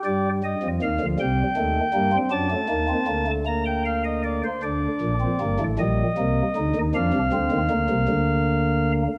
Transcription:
<<
  \new Staff \with { instrumentName = "Pipe organ" } { \time 6/8 \key g \minor \tempo 4. = 52 d''8 ees''8 f''8 g''4. | a''4. bes''16 g''16 f''16 ees''16 d''16 c''16 | \key bes \major d''4. ees''4. | f''2. | }
  \new Staff \with { instrumentName = "Pipe organ" } { \clef bass \time 6/8 \key g \minor << { g'8 g8 ees16 f16 g8 a8 bes16 c'16 | d'16 a16 bes16 c'16 bes16 a16 bes4. | \key bes \major d'8. c'16 bes16 a16 g8 bes8 ees'8 | d'8 c'8 bes2 | } \\ { <g, g>8. <f, f>16 ees,16 <d, d>16 <c, c>8 <ees, ees>8 <g, g>8 | <fis, fis>8 <ees, ees>8 <d, d>2 | <d, d>8 <bes,, bes,>8 <g,, g,>16 <a,, a,>16 <bes,, bes,>8 <c, c>8 <d, d>16 <ees, ees>16 | <f, f>16 <c, c>16 <d, d>16 <ees, ees>16 <d, d>16 <c, c>16 <d, d>4. | } >> }
>>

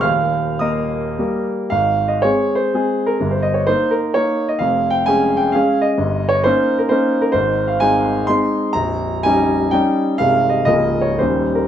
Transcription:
<<
  \new Staff \with { instrumentName = "Grand piano" } { \time 3/4 \key aes \major \tempo 4 = 126 <f'' f'''>4 <ees'' ees'''>4. r8 | f''8. ees''16 \tuplet 3/2 { des''4 c''8~ } c''8. bes'16~ | bes'16 c''16 ees''16 des''16 c''8 bes'8 des''8. ees''16 | \tuplet 3/2 { f''4 g''8 aes''4 g''8 f''4 ees''8~ } |
\tuplet 3/2 { ees''4 des''8 } c''8. bes'16 c''8. bes'16 | c''8. f''16 aes''4 c'''4 | bes''4 aes''4 g''4 | \tuplet 3/2 { f''4 ees''8 ees''4 des''8 c''4 bes'8 } | }
  \new Staff \with { instrumentName = "Grand piano" } { \time 3/4 \key aes \major <ees,, ees,>4 <bes bes'>4 <g bes bes'>4 | <aes,, aes,>4 <aes c' aes'>4 <aes c' aes'>4 | <g,, g,>4 <bes ees'>4 <bes ees'>4 | <f,, f,>4 <aes des' aes'>4 <aes des' aes'>4 |
<g,, g,>4 <bes des' ees'>4 <bes des' ees'>4 | <aes,, aes,>4 <aes c' ees'>4 <aes c' ees'>4 | <bes,,, bes,,>4 <g des' ees'>4 <g des' ees'>4 | <c,, c, aes c' ees'>4 <des,, des, aes bes f'>4 <ees,, ees, g des' ees'>4 | }
>>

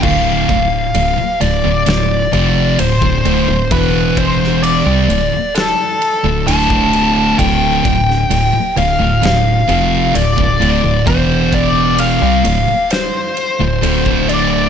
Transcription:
<<
  \new Staff \with { instrumentName = "Lead electric guitar" } { \time 4/4 \key d \minor \tempo 4 = 65 f''4. d''4 d''8 c''4 | b'8 c''8 d''4 a'4 a''4 | g''4. f''4 f''8 d''4 | c''8 d''8 f''4 c''4. d''8 | }
  \new Staff \with { instrumentName = "Distorted electric guitar" } { \clef bass \time 4/4 \key d \minor <d, a, d>8 <d, a,>8 <d, a,>16 r16 <d, a,>16 <d, a,>16 <d, a,>8 <f, c f>8 <d, a,>16 <d, a,>16 <d, a,>16 <d, a,>16 | <e, b, e>4~ <e, b, e>16 <c g>16 <d, a,>16 r4 <d, a,>16 <d, a, d>4 | <d, a, d>8 <d, a,>8 <d, a,>16 r16 <d, a,>16 <d, a,>16 <d, a,>8 <f, c f>8 <d, a,>16 <d, a,>16 <d, a,>16 <d, a,>16 | <e, b, e>4~ <e, b, e>16 <c g>16 <d, a,>16 r4 <d, a,>16 <d, a, d>4 | }
  \new Staff \with { instrumentName = "Distorted electric guitar" } { \clef bass \time 4/4 \key d \minor <d, a, d>8 <d, a,>8 <d, a,>16 r16 <d, a,>16 <d, a,>16 <d, a,>8 <f, c f>8 <d, a,>16 <d, a,>16 <d, a,>16 <d, a,>16 | <e, b, e>4~ <e, b, e>16 <c g>16 <d, a,>16 r4 <d, a,>16 <d, a, d>4 | <d, a, d>8 <d, a,>8 <d, a,>16 r16 <d, a,>16 <d, a,>16 <d, a,>8 <f, c f>8 <d, a,>16 <d, a,>16 <d, a,>16 <d, a,>16 | <e, b, e>4~ <e, b, e>16 <c g>16 <d, a,>16 r4 <d, a,>16 <d, a, d>4 | }
  \new Staff \with { instrumentName = "FM bass" } { \clef bass \time 4/4 \key d \minor d,,8 d,,8 d,,16 d,,16 d,,16 d,,16 d,,8 f,,8 d,,16 d,,16 d,,16 d,,16 | e,,4~ e,,16 c,16 d,,16 d,,8 r8 d,,16 d,,4 | d,,8 d,,8 d,,16 d,,16 d,,16 d,,16 d,,8 f,,8 d,,16 d,,16 d,,16 d,,16 | e,,4~ e,,16 c,16 d,,16 d,,8 r8 d,,16 d,,4 | }
  \new DrumStaff \with { instrumentName = "Drums" } \drummode { \time 4/4 <cymc bd>8 <bd cymr>8 cymr8 cymr8 <cymr sn>8 cymr8 cymr16 bd16 cymr8 | <bd cymr>8 <bd cymr>16 sn16 cymr8 cymr8 <cymr sn>8 cymr8 cymr16 bd16 cymr8 | <bd cymr>8 <bd cymr>16 sn16 cymr8 cymr8 <cymr sn>8 cymr8 cymr16 bd16 cymr8 | <bd cymr>8 <bd cymr>8 cymr8 cymr8 <cymr sn>8 cymr8 cymr16 bd16 cymr8 | }
>>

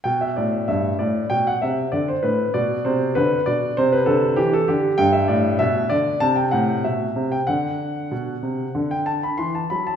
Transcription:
<<
  \new Staff \with { instrumentName = "Grand piano" } { \time 4/4 \key g \major \tempo 4 = 96 g''16 e''16 d''8 e''8 d''8 g''16 fis''16 e''8 d''16 c''16 b'8 | d''8 c''8 b'8 d''8 c''16 b'16 a'8 g'16 a'16 g'8 | g''16 e''16 d''8 e''8 d''8 a''16 g''16 fis''8 e''8. g''16 | fis''2~ fis''16 g''16 a''16 b''16 c'''16 a''16 b''16 a''16 | }
  \new Staff \with { instrumentName = "Grand piano" } { \clef bass \time 4/4 \key g \major b,8 a,8 g,8 a,8 b,8 c8 d8 a,8 | b,8 c8 d8 b,8 c8 d8 e8 d8 | g,8 a,8 b,8 d8 c8 a,8 b,8 c8 | d4 b,8 c8 d4 e8 fis8 | }
>>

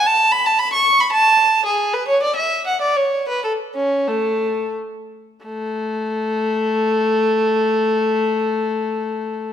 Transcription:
\new Staff \with { instrumentName = "Violin" } { \time 3/4 \key a \major \tempo 4 = 88 a''8 b''16 a''16 b''16 cis'''8 b''16 a''4 | gis'8 b'16 cis''16 d''16 e''8 fis''16 d''16 cis''8 b'16 | a'8 cis'8 a4 r4 | a2.~ |
a2. | }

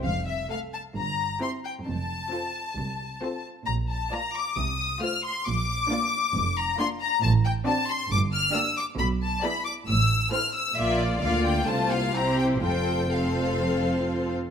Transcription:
<<
  \new Staff \with { instrumentName = "Violin section" } { \time 4/4 \key f \major \tempo 4 = 134 f''8 e''8 f''8 a''8 bes''4 c'''8 g''8 | a''2.~ a''8 r8 | bes''8 a''8 bes''8 d'''8 ees'''4 f'''8 c'''8 | d'''2~ d'''8 bes''8 c'''8 bes''8 |
a''8 g''8 a''8 c'''8 d'''8 f'''8 e'''8 d'''8 | b''8 a''8 b''8 d'''8 e'''4 f'''8 e'''8 | e''8 d''8 f''8 g''8 a''8 f''8 bes''8 g''8 | g''4 f''2~ f''8 r8 | }
  \new Staff \with { instrumentName = "Violin section" } { \time 4/4 \key f \major r4 <a' f''>4 r4 <g' c''>4 | r4 <a' c''>4 r4 <a' c''>4 | r4 <f' d''>4 r4 <f' c''>4 | r4 <f' d''>4 r4 <f' d''>4 |
r4 <fis' d''>4 r4 <g' d''>4 | r4 <gis' d''>4 r4 <a' c''>4 | <f' d''>4 <f' d''>4 <f' c''>4 <g' c''>4 | <a' c''>4 <a' c''>2~ <a' c''>8 r8 | }
  \new Staff \with { instrumentName = "Viola section" } { \time 4/4 \key f \major << { r4 a'4 r4 e'4 | r4 f'4 r4 f'4 | r4 f'4 r4 f'4 | r4 d'4 r4 d'4 |
r4 d'4 r4 d'4 | r4 e'4 r4 e'4 | f'4 f'4 f'4 e'4 | f'4 f'2~ f'8 r8 | } \\ { r4 a4 r4 c'4 | r4 c'4 r4 c'4 | r4 bes4 r4 a4 | r4 bes4 r4 bes4 |
r4 c'4 r4 bes4 | r4 b4 r4 c'4 | bes4 bes4 a8 bes8 c'4 | c'4 c'2~ c'8 r8 | } >> }
  \new Staff \with { instrumentName = "Cello section" } { \clef bass \time 4/4 \key f \major f,4 r4 g,4 r4 | f,4 r4 c,4 r4 | bes,4 r4 c4 r4 | bes,4 r4 f,4 r4 |
a,4 r4 g,4 r4 | b,4 r4 a,4 r4 | bes,4 d4 c4 c4 | f,2.~ f,8 r8 | }
  \new Staff \with { instrumentName = "Double bass section" } { \clef bass \time 4/4 \key f \major f,,4 r4 g,,4 r4 | f,,4 r4 c,4 r4 | bes,,4 r4 c,4 r4 | bes,,4 r4 f,,4 r4 |
a,,4 r4 g,,4 r4 | b,,4 r4 a,,4 r4 | bes,,4 d,4 c,4 c,4 | f,,2.~ f,,8 r8 | }
>>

